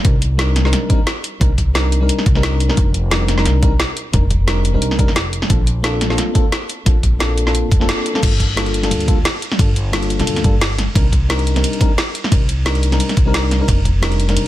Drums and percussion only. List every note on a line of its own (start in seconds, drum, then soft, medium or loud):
0.05 kick loud
0.05 closed hi-hat medium
0.22 closed hi-hat medium
0.39 snare loud
0.39 closed hi-hat medium
0.56 snare soft
0.56 closed hi-hat medium
0.65 snare soft
0.73 snare soft
0.73 closed hi-hat medium
0.90 kick loud
0.90 closed hi-hat medium
1.07 snare loud
1.07 closed hi-hat medium
1.24 closed hi-hat medium
1.41 kick loud
1.41 closed hi-hat medium
1.58 kick medium
1.58 closed hi-hat medium
1.75 snare loud
1.75 closed hi-hat medium
1.92 closed hi-hat medium
2.09 closed hi-hat medium
2.19 snare soft
2.26 kick loud
2.26 closed hi-hat medium
2.35 snare soft
2.43 snare loud
2.43 closed hi-hat medium
2.60 closed hi-hat medium
2.69 snare soft
2.77 kick loud
2.77 closed hi-hat medium
2.94 closed hi-hat medium
3.11 snare loud
3.11 closed hi-hat medium
3.28 snare soft
3.28 closed hi-hat medium
3.38 snare soft
3.46 snare soft
3.46 closed hi-hat medium
3.63 kick loud
3.63 closed hi-hat medium
3.80 snare loud
3.80 closed hi-hat medium
3.97 closed hi-hat medium
4.13 kick loud
4.13 closed hi-hat medium
4.30 kick medium
4.30 closed hi-hat medium
4.48 snare loud
4.48 closed hi-hat medium
4.65 closed hi-hat medium
4.82 closed hi-hat medium
4.91 snare soft
4.99 kick loud
4.99 closed hi-hat medium
5.08 snare soft
5.16 snare loud
5.16 closed hi-hat loud
5.33 closed hi-hat medium
5.42 snare soft
5.50 kick loud
5.50 closed hi-hat loud
5.67 closed hi-hat medium
5.84 snare loud
5.84 closed hi-hat loud
6.01 snare soft
6.01 closed hi-hat medium
6.10 snare soft
6.18 snare soft
6.18 closed hi-hat loud
6.35 kick loud
6.35 closed hi-hat medium
6.52 snare loud
6.52 closed hi-hat loud
6.69 closed hi-hat medium
6.86 kick loud
6.86 closed hi-hat loud
7.03 kick medium
7.03 closed hi-hat medium
7.20 snare loud
7.20 closed hi-hat loud
7.38 closed hi-hat medium
7.47 snare soft
7.55 closed hi-hat loud
7.72 kick loud
7.72 closed hi-hat medium
7.81 snare soft
7.89 snare loud
7.89 closed hi-hat loud
8.06 closed hi-hat medium
8.15 snare soft
8.23 kick loud
8.23 closed hi-hat loud
8.23 crash loud
8.23 ride medium
8.40 kick medium
8.40 closed hi-hat medium
8.57 snare loud
8.57 closed hi-hat loud
8.57 ride medium
8.66 closed hi-hat soft
8.74 closed hi-hat medium
8.83 snare soft
8.83 closed hi-hat soft
8.91 closed hi-hat loud
8.91 ride medium
9.00 closed hi-hat soft
9.08 kick loud
9.08 closed hi-hat medium
9.25 snare loud
9.25 closed hi-hat loud
9.25 ride medium
9.42 closed hi-hat medium
9.52 snare medium
9.59 kick loud
9.59 closed hi-hat medium
9.59 ride medium
9.76 closed hi-hat medium
9.93 snare loud
9.93 closed hi-hat medium
9.93 ride medium
10.03 closed hi-hat soft
10.10 closed hi-hat medium
10.20 snare soft
10.20 closed hi-hat soft
10.27 closed hi-hat loud
10.27 ride medium
10.36 snare soft
10.36 closed hi-hat soft
10.44 kick loud
10.44 closed hi-hat medium
10.61 snare loud
10.61 closed hi-hat loud
10.61 ride medium
10.78 snare soft
10.78 closed hi-hat medium
10.95 kick loud
10.95 closed hi-hat medium
10.95 ride medium
11.13 kick medium
11.13 closed hi-hat medium
11.30 snare loud
11.30 closed hi-hat medium
11.30 ride medium
11.39 closed hi-hat soft
11.47 closed hi-hat medium
11.56 snare soft
11.56 closed hi-hat soft
11.64 closed hi-hat medium
11.64 ride medium
11.73 closed hi-hat soft
11.81 kick loud
11.81 closed hi-hat medium
11.98 snare loud
11.98 closed hi-hat medium
11.98 ride medium
12.15 closed hi-hat medium
12.24 snare soft
12.32 kick loud
12.32 closed hi-hat medium
12.32 ride medium
12.49 closed hi-hat medium
12.66 snare loud
12.66 closed hi-hat medium
12.66 ride medium
12.75 closed hi-hat soft
12.83 closed hi-hat medium
12.92 snare soft
12.92 closed hi-hat soft
13.00 closed hi-hat medium
13.00 ride medium
13.09 snare soft
13.09 closed hi-hat soft
13.17 kick loud
13.17 closed hi-hat medium
13.34 snare loud
13.34 closed hi-hat medium
13.34 ride medium
13.51 snare soft
13.51 closed hi-hat medium
13.68 kick loud
13.68 closed hi-hat medium
13.68 ride medium
13.85 kick medium
13.85 closed hi-hat medium
14.03 snare loud
14.03 closed hi-hat medium
14.03 ride medium
14.12 closed hi-hat soft
14.20 closed hi-hat medium
14.29 snare soft
14.29 closed hi-hat soft
14.37 closed hi-hat medium
14.37 ride medium